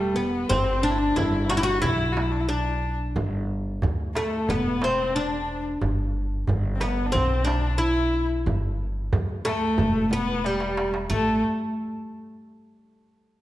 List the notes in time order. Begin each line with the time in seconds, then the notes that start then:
Already playing: E1 G3
0.00 A3
0.16 B3
0.34 darbuka ka
0.49 G1 C4, darbuka dum, frame drum
0.83 D4
0.91 E4
0.98 D4
1.16 G1 E4, darbuka dum, frame drum
1.49 F#4, darbuka tek, frame drum
1.57 E4 G4
1.63 F#4
1.82 B1 E4, darbuka dum, frame drum
2.12 F#4
2.17 darbuka tek, frame drum
2.22 E4
2.32 D4, darbuka ka
2.40 E4
2.49 D4
2.83 darbuka ka
3.16 G1, darbuka dum, frame drum
3.82 D2, darbuka dum, frame drum
4.15 A3, darbuka tek, frame drum
4.49 E1 B3, darbuka dum, frame drum
4.82 C4, darbuka tek, frame drum
4.98 darbuka ka
5.15 D4
5.48 darbuka ka
5.81 G1, darbuka dum, frame drum
6.47 G1, darbuka dum, frame drum
6.75 C4
6.81 B3, darbuka tek, frame drum
7.06 D4
7.12 B1 C4, darbuka dum, frame drum
7.45 D4, darbuka tek, frame drum
7.64 darbuka ka
7.78 E4
8.14 darbuka ka
8.46 G1, darbuka dum, frame drum
9.13 D2, darbuka dum, frame drum
9.29 darbuka ka
9.45 A3, darbuka tek, frame drum
9.78 E1, frame drum, darbuka dum
10.11 B3, frame drum
10.44 G3, darbuka tek
10.60 darbuka ka
10.77 darbuka tek
10.94 darbuka ka
11.10 A1 A3, darbuka dum, frame drum